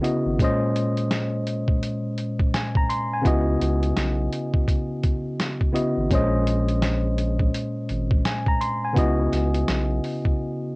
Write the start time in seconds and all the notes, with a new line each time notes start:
0.01 C#3 B3 E4 F#4 D#5, closed hi-hat
0.26 G#1
0.38 A#2 G#3 C#4, kick, closed hi-hat
0.43 C5 D#5
0.76 closed hi-hat
0.97 closed hi-hat
1.11 snare, closed hi-hat
1.47 closed hi-hat
1.68 kick
1.83 closed hi-hat
2.18 closed hi-hat
2.39 kick
2.54 G#5, snare, closed hi-hat
2.75 A#5, kick
2.90 C6, closed hi-hat
3.14 G#5
3.22 C#2 C#3 B3 E4, kick, closed hi-hat
3.26 F#4 D#5
3.61 C#2, closed hi-hat
3.83 closed hi-hat
3.97 B1, snare, closed hi-hat
4.33 closed hi-hat
4.54 kick
4.68 kick, closed hi-hat
5.03 kick, closed hi-hat
5.40 snare, closed hi-hat
5.61 kick
5.72 C#3 B3 E4 F#4 D#5, closed hi-hat
5.97 G#1
6.10 A#1 A#2 G#3 C#4 C5, kick, closed hi-hat
6.15 D#5
6.47 closed hi-hat
6.69 closed hi-hat
6.82 snare, closed hi-hat
7.18 closed hi-hat
7.39 kick
7.54 closed hi-hat
7.89 G#1, closed hi-hat
8.11 kick
8.25 G#5, snare, closed hi-hat
8.47 A#5, kick
8.61 C6, closed hi-hat
8.85 G#5
8.93 C#2 C#3 B3 E4, kick
8.97 F#4 D#5, closed hi-hat
9.33 C#2, snare, closed hi-hat
9.54 closed hi-hat
9.68 B1, snare, closed hi-hat
10.04 open hi-hat
10.25 kick